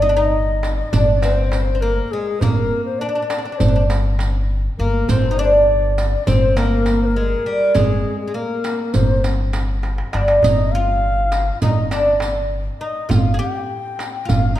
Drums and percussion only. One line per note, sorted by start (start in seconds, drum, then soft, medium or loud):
0.63 riq soft
0.63 darbuka tek medium
0.93 riq medium
0.93 darbuka dum medium
1.22 riq medium
1.22 darbuka tek medium
1.52 riq medium
1.52 darbuka tek medium
2.12 darbuka ka soft
2.26 darbuka ka soft
2.41 riq medium
2.41 darbuka dum medium
3.30 riq soft
3.30 darbuka tek medium
3.60 riq medium
3.60 darbuka dum medium
3.90 riq soft
3.90 darbuka tek medium
4.19 riq medium
4.19 darbuka tek medium
4.79 darbuka ka soft
4.94 darbuka ka soft
5.09 riq medium
5.09 darbuka dum medium
5.98 riq soft
5.98 darbuka tek medium
6.27 riq medium
6.27 darbuka dum medium
6.57 riq soft
6.57 darbuka tek medium
6.86 riq soft
6.86 darbuka tek medium
7.46 darbuka ka soft
7.61 darbuka ka soft
7.75 riq medium
7.75 darbuka dum medium
8.64 riq soft
8.64 darbuka tek medium
8.94 riq medium
8.94 darbuka dum medium
9.24 riq medium
9.24 darbuka tek medium
9.53 riq soft
9.53 darbuka tek medium
9.83 riq soft
9.83 darbuka tek medium
9.98 darbuka ka medium
10.13 riq soft
10.13 darbuka tek medium
10.28 riq soft
10.28 darbuka ka medium
10.43 riq medium
10.43 darbuka dum medium
11.32 riq medium
11.32 darbuka tek medium
11.62 riq medium
11.62 darbuka dum medium
11.91 riq medium
11.91 darbuka tek medium
12.20 riq medium
12.20 darbuka tek medium
12.80 darbuka ka soft
12.96 darbuka ka soft
13.10 riq medium
13.10 darbuka dum medium
13.99 riq soft
13.99 darbuka tek medium
14.29 riq medium
14.29 darbuka dum medium